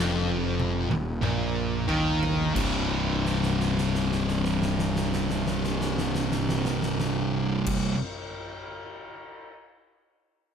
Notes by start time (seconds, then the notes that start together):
Already playing: F1 F2
0.60 high tom
0.91 D#1 D#2, high tom
1.23 A#1 A#2, mid tom
1.87 D#2 D#3, floor tom
2.23 floor tom
2.54 C1 C2 G2 C3, kick, crash
3.26 snare
3.43 snare
3.61 snare
3.78 snare
3.95 snare
4.12 snare
4.28 snare
4.45 snare
4.62 snare
4.79 snare
4.96 snare
5.13 snare
5.30 snare
5.47 snare
5.64 snare
5.81 snare
5.98 snare
6.15 snare
6.32 snare
6.49 snare
6.65 snare
6.82 snare
7.00 snare
7.66 kick, crash